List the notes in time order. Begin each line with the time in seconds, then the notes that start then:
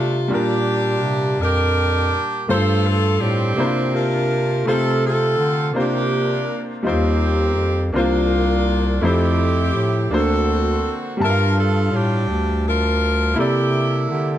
Already playing: C3 G3 A3 D4 F4 A4
0.28 A#2 G3 D4
0.32 D4 F4 G4 A#4
1.03 C3
1.40 F2 D4 G4 A#4
2.48 G2 A3 F4 A4 C5
2.54 A3
2.87 A4
3.20 A2 C4 D4 G4
3.55 C3 A#3 D4
3.59 E4 C5
3.66 F4
3.94 D4 F4 A#4
4.65 C3 A3 C4 F4 A4 C5
5.06 C4 F4 A4
5.38 D3
5.73 C3 A#3 D4 F4 C5
5.80 A#3 D4 G4
6.83 D#2 D#3 G3 D#4 F4
6.87 A#3 C4 G4 C5
7.56 F2
7.92 C2 C3 A#3 D4 F4
7.96 A#3 D4 F4 C5
9.01 F2 F3 A3 C4 E4 G4 C5
9.74 A2
10.10 D2 D3 A#3 D4 F#4
10.14 C4 F#4 A4 C5
11.17 G2 G3 G4
11.21 D4 F4 A#4 E5 A5
11.30 F5
11.60 A4
11.92 A2 D4 G4
12.29 D2
12.68 D4 F4 A#4
13.34 C3 A#3 E4
13.38 A#3 E4 G4 A4 D5
14.10 D3 G4